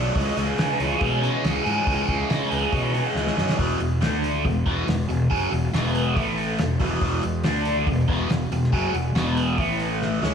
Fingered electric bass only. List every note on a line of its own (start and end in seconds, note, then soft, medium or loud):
0.16 0.29 C#2 medium
0.37 0.51 C#2 medium
0.59 0.72 C#3 medium
0.80 0.94 C#2 medium
1.01 1.29 B2 loud
1.44 1.58 C#2 medium
1.66 1.80 G#2 loud
1.87 2.01 C#2 medium
2.08 2.22 C#2 medium
2.31 2.44 C#3 medium
2.51 2.65 C#2 medium
2.73 3.00 B2 medium
3.15 3.29 C#2 medium
3.37 3.51 F#2 medium
3.59 3.79 E1 medium
3.80 4.00 E1 medium
4.02 4.42 D2 medium
4.45 4.65 E1 medium
4.66 4.86 E1 loud
4.87 5.07 E1 medium
5.09 5.29 E1 medium
5.32 5.51 F#1 medium
5.52 5.72 E1 medium
5.73 6.13 E1 loud
6.16 6.56 A1 medium
6.59 6.79 E1 medium
6.81 7.00 E1 loud
7.02 7.22 E1 medium
7.24 7.43 E1 medium
7.45 7.84 D2 medium
7.87 8.07 E1 medium
8.09 8.29 E1 loud
8.29 8.50 E1 medium
8.51 8.71 E1 medium
8.73 8.93 F#1 medium
8.94 9.14 E1 medium
9.15 9.55 E1 medium
9.58 10.19 A1 loud
10.23 10.34 C#2 medium